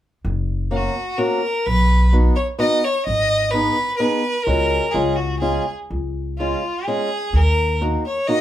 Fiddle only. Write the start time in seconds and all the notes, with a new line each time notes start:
0.72 F#4
1.18 A#4
1.66 B4
2.36 C#5
2.59 D#5
2.84 C#5
3.05 D#5
3.51 B4
3.96 B4
4.44 A#4
4.91 G#4
5.16 F#4
5.39 G#4
6.38 F4
6.86 G#4
7.35 A#4
8.05 C#5
8.27 D#5